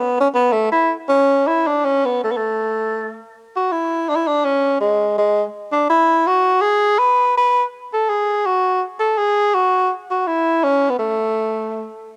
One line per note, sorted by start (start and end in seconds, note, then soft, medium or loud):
0.00 0.20 B3 medium
0.21 0.28 C#4 medium
0.34 0.54 B3 medium
0.53 0.71 A3 medium
0.72 0.92 E4 medium
1.09 1.48 C#4 medium
1.47 1.68 E4 medium
1.67 1.86 D4 medium
1.85 2.06 C#4 medium
2.05 2.23 B3 medium
2.24 2.32 A3 medium
2.31 2.38 B3 medium
2.37 3.18 A3 medium
3.56 3.73 F#4 medium
3.72 4.10 E4 medium
4.09 4.17 D4 medium
4.16 4.29 E4 medium
4.27 4.46 D4 medium
4.45 4.80 C#4 medium
4.81 5.15 G#3 medium
5.18 5.44 G#3 medium
5.72 5.88 D4 medium
5.90 6.28 E4 loud
6.27 6.63 F#4 loud
6.61 7.00 G#4 loud
6.98 7.36 B4 loud
7.37 7.63 B4 loud
7.93 8.10 A4 medium
8.09 8.47 G#4 medium
8.45 8.82 F#4 medium
8.99 9.19 A4 medium
9.17 9.55 G#4 loud
9.54 9.90 F#4 medium
10.10 10.29 F#4 medium
10.27 10.65 E4 medium
10.63 10.91 C#4 loud
10.90 10.98 B3 medium
10.99 11.88 A3 medium